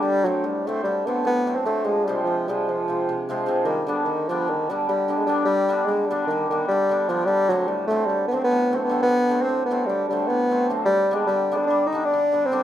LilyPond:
<<
  \new Staff \with { instrumentName = "Bassoon" } { \clef bass \time 9/8 \tempo 4. = 100 g8 fis8 g8 a8 g8 b8 b8. c'16 a8 | aes8 g8 f8 g8 f4. r4 | ees8 d8 ees8 f8 ees8 g8 g8. aes16 g8 | g4 aes8 g8 ees8 ees8 g4 f8 |
g8 fis8 g8 a8 g8 b32 c'32 r16 b8. c'16 b8 | b4 c'8 b8 g8 g8 b4 r8 | g8. aes16 g8. d'16 d'8 ees'8 d'4 c'8 | }
  \new Staff \with { instrumentName = "Hammered dulcimer" } { \clef bass \time 9/8 << { r8 <d fis a c'>8 r8 <d fis a c'>8 r8 <d fis a c'>8 r8 <d fis a c'>8 <d fis a c'>8 | r8 <c f aes c'>8 r8 <c f aes c'>8 r8 <c f aes c'>8 r8 <c f aes c'>8 <c f aes c'>8 | r8 <d g b d'>8 r8 <d g b d'>8 r8 <d g b d'>8 r8 <d g b d'>8 <d g b d'>8 | r8 <d g b d'>8 r8 <d g b d'>8 r8 <d g b d'>8 r8 <d g b d'>8 <d g b d'>8 |
r8 <d fis a c'>8 r8 <d fis a c'>8 r8 <d fis a c'>8 r8 <d fis a c'>8 <d fis a c'>8 | r8 <d fis a c'>8 r8 <d fis a c'>8 r8 <d fis a c'>8 r8 <d fis a c'>8 <d fis a c'>8 | r8 <d g b d'>8 r8 <d g b d'>8 r8 <d g b d'>8 r8 <d g b d'>8 <d g b d'>8 | } \\ { d4 a,4 d4 a,4 r8 | f4 c4 f4 c4 r8 | g4 d4 g4 d4 r8 | g4 d4 g4 d4 r8 |
d4 a,4 d4 a,4 r8 | d4 a,4 d4 a,4 r8 | g4 d4 g4 d4 r8 | } >> }
>>